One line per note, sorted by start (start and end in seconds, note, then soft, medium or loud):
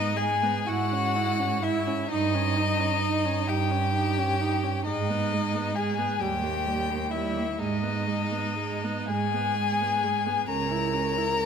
0.00 0.49 G#2 medium
0.00 0.16 B3 medium
0.00 0.18 D#4 medium
0.00 0.18 D#5 loud
0.17 0.44 G#3 medium
0.17 0.69 G#4 medium
0.17 0.70 G#5 medium
0.43 0.67 B3 medium
0.66 1.93 G#2 medium
0.66 0.94 E4 medium
0.66 1.64 F#4 medium
0.66 1.65 F#5 loud
0.92 1.17 C#4 medium
1.16 1.41 E4 medium
1.40 1.63 C#4 medium
1.63 2.09 E4 medium
1.63 1.88 E4 medium
1.63 2.10 E5 medium
1.87 2.10 C#4 medium
2.10 3.31 G2 medium
2.10 3.49 D#4 medium
2.10 2.36 D#4 medium
2.10 3.50 D#5 loud
2.34 2.58 C#4 medium
2.57 2.81 D#4 medium
2.80 3.01 C#4 soft
3.02 3.26 D#4 medium
3.25 3.49 C#4 medium
3.48 4.69 G2 medium
3.48 3.72 D#4 soft
3.48 4.84 G4 medium
3.48 4.85 G5 medium
3.70 3.93 C#4 medium
3.94 4.19 D#4 medium
4.18 4.42 C#4 medium
4.41 4.65 D#4 medium
4.64 4.86 C#4 soft
4.85 6.04 G#2 medium
4.85 5.11 G#3 medium
4.85 5.77 D#4 medium
4.85 5.77 D#5 medium
5.10 5.34 B3 soft
5.33 5.56 G#3 soft
5.55 5.76 B3 soft
5.75 6.00 G#3 medium
5.75 6.21 G#4 medium
5.75 6.22 G#5 medium
5.98 6.20 B3 medium
6.19 7.42 D#2 medium
6.19 6.45 G3 medium
6.19 7.11 G4 medium
6.19 7.12 G5 medium
6.43 6.68 A#3 soft
6.66 6.91 G3 soft
6.89 7.12 A#3 soft
7.11 7.38 G3 medium
7.11 7.61 E4 medium
7.11 7.61 E5 medium
7.36 7.59 A#3 soft
7.58 8.90 G#2 medium
7.58 7.85 G#3 medium
7.58 9.10 D#4 medium
7.58 9.08 D#5 medium
7.83 8.09 B3 soft
8.07 8.33 G#3 soft
8.32 8.57 B3 soft
8.59 8.85 G#3 medium
8.84 9.11 B3 medium
9.07 10.31 G#2 medium
9.07 9.36 G#3 soft
9.07 10.48 G#4 medium
9.07 10.44 G#5 medium
9.34 9.57 B3 medium
9.58 9.82 G#3 soft
9.81 10.05 B3 soft
10.03 10.27 G#3 medium
10.26 10.48 B3 soft
10.47 11.46 C#2 medium
10.47 10.72 C#4 medium
10.47 11.46 A#4 medium
10.47 11.46 A#5 loud
10.71 10.95 E4 soft
10.94 11.19 C#4 soft
11.17 11.40 E4 soft
11.41 11.46 C#4 medium